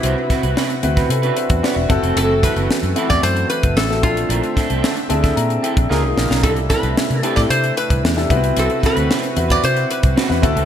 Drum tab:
HH |x-xx-xxxxxxx--xx|x-xx-xxxxxxx--xx|xxxx-xxxxxxx----|xxxx-xxxxxxx-xxx|
SD |--o-o--o----o---|--o-o--o----oo--|--o-o--o----o-oo|--o-o--o----oo--|
BD |--o----o---o--o-|--o----o---o--o-|--o----o---o----|o-o----o---o--o-|

HH |xxxx-xxxxxxx--xx|
SD |--o-o--o----oo--|
BD |--o----o---o--o-|